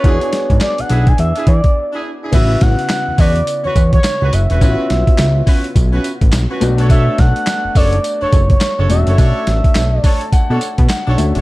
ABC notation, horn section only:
X:1
M:4/4
L:1/16
Q:"Swing 16ths" 1/4=105
K:A
V:1 name="Horn section"
[DEG]2 z4 [DEG] z2 [DEG] z3 [DEG] z [DEG] | [CFB]2 z4 [CFB] z2 [CFB] z3 [CFB] z [CFB] | [CFB]2 z4 [CFB] z2 [CFB] z3 [CFB] z [DAc] | [DAc]2 z4 [DAc] z2 [DAc] z3 [DAc] z [DAc] |
[DAc]2 z4 [DAc] z2 [DAc] z3 [DAc] z [DAc] |]